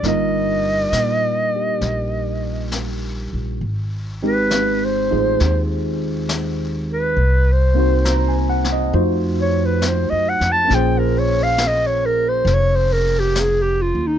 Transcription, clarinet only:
0.08 2.69 D#5 medium
4.26 4.86 B4 medium
4.84 5.71 C5 medium
6.93 7.54 B4 medium
7.52 8.37 C5 medium
9.42 9.67 C#5 medium
9.66 9.90 B4 medium
9.88 10.11 C5 medium
10.10 10.30 D#5 medium
10.29 10.54 F#5 medium
10.52 10.76 A5 loud
10.75 11.00 G5 medium
10.98 11.20 A#4 medium
11.19 11.45 C#5 medium
11.43 11.69 F5 medium
11.67 11.88 D#5 medium
11.87 12.07 C#5 medium
12.06 12.30 A#4 medium
12.29 12.55 C5 medium
12.54 12.77 C#5 medium
12.75 12.94 C5 medium
12.93 13.21 A#4 medium
13.20 13.42 G4 medium
13.40 13.63 G#4 medium
13.62 13.83 G4 medium
13.82 14.09 F4 medium
14.07 14.19 D#4 medium

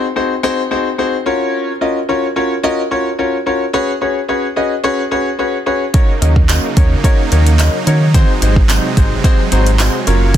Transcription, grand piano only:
0.16 0.33 C4 medium
0.16 0.33 D#4 medium
0.16 0.33 F#4 medium
0.16 0.33 G#4 medium
0.16 0.33 C5 loud
0.43 0.60 C4 loud
0.43 0.60 D#4 loud
0.43 0.60 F#4 loud
0.43 0.60 G#4 loud
0.43 0.60 C5 loud
0.71 0.88 C4 loud
0.71 0.88 D#4 medium
0.71 0.88 F#4 medium
0.71 0.88 G#4 medium
0.71 0.88 C5 loud
0.98 1.15 C4 medium
0.98 1.15 D#4 medium
0.98 1.15 F#4 medium
0.98 1.15 G#4 medium
0.98 1.15 C5 loud
1.26 1.71 C#4 loud
1.26 1.71 F4 medium
1.26 1.71 F#4 medium
1.26 1.71 A#4 medium
1.26 1.71 C#5 loud
1.81 1.98 C#4 medium
1.81 1.98 F4 medium
1.81 1.98 F#4 medium
1.81 1.98 A#4 medium
1.81 1.98 D#5 loud
2.09 2.25 C#4 medium
2.09 2.25 F4 medium
2.09 2.25 F#4 medium
2.09 2.25 A#4 medium
2.09 2.26 C#5 loud
2.36 2.53 C#4 medium
2.36 2.53 F4 medium
2.36 2.53 F#4 medium
2.36 2.53 A#4 medium
2.36 2.53 C#5 loud
2.63 2.80 C#4 loud
2.63 2.80 F4 loud
2.63 2.80 F#4 loud
2.63 2.80 A#4 loud
2.63 2.80 D#5 loud
2.91 3.08 C#4 medium
2.91 3.08 F4 medium
2.91 3.08 F#4 medium
2.91 3.08 A#4 medium
2.91 3.08 C#5 loud
3.19 3.35 C#4 medium
3.19 3.35 F4 medium
3.19 3.35 F#4 medium
3.19 3.35 A#4 medium
3.19 3.36 C#5 loud
3.46 3.63 C#4 medium
3.46 3.63 F4 medium
3.46 3.63 F#4 medium
3.46 3.63 A#4 medium
3.46 3.63 C#5 loud
3.73 3.90 C#4 loud
3.73 3.90 F#4 loud
3.73 3.90 G#4 loud
3.73 3.90 B4 loud
3.73 3.90 C#5 loud
4.01 4.18 C#4 medium
4.01 4.18 F#4 medium
4.01 4.18 G#4 medium
4.01 4.18 B4 medium
4.01 4.18 C#5 medium
4.28 4.45 C#4 medium
4.28 4.45 F#4 medium
4.28 4.45 G#4 medium
4.28 4.45 B4 medium
4.28 4.46 C#5 loud
4.56 4.73 C#4 medium
4.56 4.73 F#4 medium
4.56 4.73 G#4 medium
4.56 4.73 B4 medium
4.56 4.73 D#5 loud
4.84 5.00 C#4 loud
4.84 5.00 F#4 loud
4.84 5.01 G#4 loud
4.84 5.01 B4 loud
4.84 5.01 C#5 loud
5.11 5.28 C#4 medium
5.11 5.28 F#4 medium
5.11 5.28 G#4 medium
5.11 5.28 B4 medium
5.11 5.28 C#5 loud
5.39 5.55 C#4 medium
5.39 5.55 F#4 medium
5.39 5.56 G#4 medium
5.39 5.56 B4 medium
5.39 5.56 C#5 loud
5.66 5.83 C#4 medium
5.66 5.83 F#4 medium
5.66 5.83 G#4 medium
5.66 5.83 B4 medium
5.66 5.83 C#5 loud
5.94 6.10 C#4 loud
5.94 6.10 D#4 loud
5.94 6.11 F#4 loud
5.94 6.11 A#4 loud
5.94 6.11 C#5 loud
6.21 6.38 C#4 medium
6.21 6.38 D#4 medium
6.21 6.38 F#4 medium
6.21 6.38 A#4 medium
6.21 6.38 D#5 medium
6.49 6.66 C#4 medium
6.49 6.66 D#4 medium
6.49 6.66 F#4 medium
6.49 6.66 A#4 medium
6.49 6.66 D#5 loud
6.77 6.93 C#4 medium
6.77 6.93 D#4 medium
6.77 6.93 F#4 medium
6.77 6.93 A#4 medium
6.77 6.93 C#5 loud
7.04 7.21 C#4 loud
7.04 7.21 D#4 loud
7.04 7.21 F#4 loud
7.04 7.21 A#4 loud
7.04 7.21 C#5 loud
7.32 7.48 C#4 medium
7.32 7.48 D#4 medium
7.32 7.48 F#4 medium
7.32 7.48 A#4 medium
7.32 7.49 C#5 loud
7.59 7.76 C#4 medium
7.59 7.76 D#4 medium
7.59 7.76 F#4 medium
7.59 7.76 A#4 medium
7.59 7.76 D#5 loud
7.87 8.03 C#4 medium
7.87 8.03 D#4 medium
7.87 8.03 F#4 medium
7.87 8.03 A#4 medium
7.87 8.04 C#5 loud
8.14 8.31 C4 loud
8.14 8.31 D#4 loud
8.14 8.31 F#4 loud
8.14 8.31 G#4 loud
8.14 8.31 C5 loud
8.42 8.58 C4 medium
8.42 8.59 D#4 medium
8.42 8.59 F#4 medium
8.42 8.59 G#4 medium
8.42 8.59 C5 medium
8.70 8.86 C4 medium
8.70 8.86 D#4 medium
8.70 8.86 F#4 medium
8.70 8.86 G#4 medium
8.70 8.86 C5 loud
8.97 9.13 C4 medium
8.97 9.14 D#4 medium
8.97 9.14 F#4 medium
8.97 9.14 G#4 medium
8.97 9.14 C5 loud
9.24 9.41 C4 loud
9.24 9.41 D#4 loud
9.24 9.41 F#4 loud
9.24 9.41 G#4 loud
9.24 9.41 C5 loud
9.52 9.69 C4 loud
9.52 9.69 D#4 medium
9.52 9.69 F#4 medium
9.52 9.69 G#4 medium
9.52 9.69 C5 loud
9.52 9.78 A#5 medium
9.79 9.96 C4 medium
9.79 9.96 D#4 medium
9.79 9.96 F#4 medium
9.79 9.96 G#4 medium
9.79 9.96 C5 loud
9.79 10.05 G#5 medium
10.07 10.37 C#4 medium
10.07 10.37 F4 medium
10.07 10.37 F#4 medium
10.07 10.37 A#4 medium
10.07 10.37 C#5 loud
10.07 10.33 F#5 medium

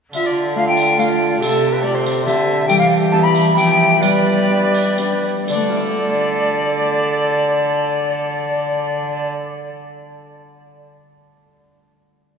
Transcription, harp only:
0.13 1.43 D3 soft
0.55 0.97 A3 soft
0.55 0.97 F4 soft
0.98 1.43 A3 soft
0.98 1.43 F4 soft
1.41 2.70 C3 soft
1.83 2.25 C4 soft
1.83 2.25 G4 soft
2.25 2.70 D3 soft
2.25 2.70 C4 soft
2.25 3.12 G4 soft
2.69 4.01 G3 medium
3.13 3.55 B3 soft
3.13 3.55 E4 soft
3.13 3.55 G4 soft
3.56 4.04 F3 soft
3.56 4.48 B3 soft
3.56 4.04 E4 soft
3.56 4.49 G4 soft
4.02 5.50 G3 soft
4.49 4.97 B3 soft
4.49 4.97 D4 soft
4.49 4.97 G4 soft
4.98 5.50 B3 soft
4.98 5.61 D4 soft
4.98 5.50 G4 soft
5.49 9.88 D3 soft
5.55 9.95 A3 soft
5.63 10.02 D4 soft
5.70 10.09 F4 soft
5.77 10.12 D5 soft

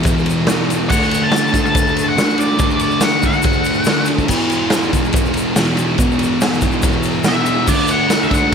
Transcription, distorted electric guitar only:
0.00 0.47 E2 medium
0.00 0.48 B2 medium
0.00 0.48 E3 medium
0.48 0.89 E2 medium
0.48 0.90 B2 medium
0.48 0.91 E3 medium
0.91 1.56 D3 loud
0.91 1.55 A3 loud
0.91 1.52 D4 medium
1.53 2.17 A3 medium
1.53 2.15 D4 medium
1.57 2.16 D3 medium
2.17 2.57 D3 medium
2.17 2.59 A3 medium
2.17 2.60 D4 medium
2.58 3.21 D3 loud
2.58 3.22 A3 loud
2.63 3.22 D4 loud
3.23 3.86 A3 medium
3.23 3.85 D4 loud
3.28 3.85 D3 medium
3.87 4.27 D3 medium
3.87 4.29 A3 medium
3.91 4.30 D4 medium
4.29 4.96 E2 medium
4.29 4.92 B2 medium
4.29 4.92 E3 loud
4.92 5.55 B2 medium
4.92 5.54 E3 loud
4.97 5.55 E2 medium
5.56 5.95 E2 medium
5.56 5.97 B2 medium
5.61 5.99 E3 medium
5.96 6.59 E2 medium
5.96 6.60 B2 loud
5.96 6.60 E3 loud
6.61 7.25 E2 medium
6.61 7.24 B2 medium
6.61 7.23 E3 medium
7.26 7.66 E2 medium
7.26 7.67 B2 medium
7.26 7.68 E3 medium
7.68 8.30 D3 medium
7.68 8.31 A3 loud
7.68 8.31 D4 loud
8.31 8.54 A3 medium
8.31 8.54 D4 medium
8.35 8.54 D3 medium

